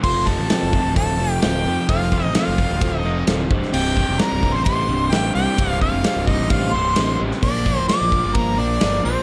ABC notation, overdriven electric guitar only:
X:1
M:4/4
L:1/8
Q:1/4=130
K:Cdor
V:1 name="Overdriven electric guitar" clef=bass
[F,,C,F,] [F,,C,F,] [F,,C,F,] [F,,C,F,] [F,,C,F,] [F,,C,F,] [F,,C,F,] [F,,C,F,] | [F,,C,F,] [F,,C,F,] [F,,C,F,] [F,,C,F,] [F,,C,F,] [F,,C,F,] [F,,C,F,] [C,,G,,C,] | [C,,G,,C,] [C,,G,,C,] [C,,G,,C,] [C,,G,,C,] [C,,G,,C,] [C,,G,,C,] [C,,G,,C,] [C,,G,,C,] | [C,,G,,C,] [C,,G,,C,] [C,,G,,C,] [C,,G,,C,] [C,,G,,C,] [C,,G,,C,] [C,,G,,C,] [C,,G,,C,] |
[B,,F,B,] [B,,F,B,] [B,,F,B,] [B,,F,B,] [B,,F,B,] [B,,F,B,] [B,,F,B,] [B,,F,B,] |]